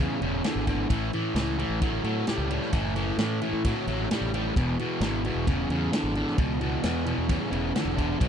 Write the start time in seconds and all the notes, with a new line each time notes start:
0.00 E2 C#3
0.21 E1 E2 C#3, ride
0.44 E2 D3, snare, ride
0.55 G#1
0.67 E2 D3, kick, ride
0.89 A1 A2 E3, kick, ride
1.13 A2 E3, ride
1.34 C#2 A2 E3, snare, ride
1.58 A2 E3, ride
1.69 A1
1.81 A2 F#3, kick, ride
2.04 A2 F#3, ride
2.27 A2 G3, snare, ride
2.38 C#2
2.50 A2 G3, ride
2.62 snare
2.72 F#1 A2 E3, kick, ride
2.96 A2 E3, ride
3.18 A2 E3, snare, ride
3.41 A2 E3, ride
3.53 A2
3.65 A2 F#3, kick, ride
3.87 A1 A2 F#3, ride
4.11 A2 G3, snare, ride
4.21 A1
4.34 A2 G3, ride
4.56 E1 E2 B2, kick, ride
4.79 E2 B2, ride
5.00 G#1 E2 B2, snare, ride
5.25 E2 B2, ride
5.35 E1
5.47 E2 C#3, kick, ride
5.69 E2 C#3, ride
5.93 E2 D3, snare, ride
6.03 G#1
6.15 E2 D3, ride
6.27 snare
6.38 C#2 E2 B2, kick, ride
6.61 E2 B2, ride
6.83 E2 B2, snare, ride
7.06 E2 B2, ride
7.18 E2
7.29 E2 C#3, kick, ride
7.51 E1 E2 C#3, ride
7.75 E2 D3, snare, ride
7.85 E1
7.97 E2 D3, kick, ride
8.20 B1 B2 F#3, kick, ride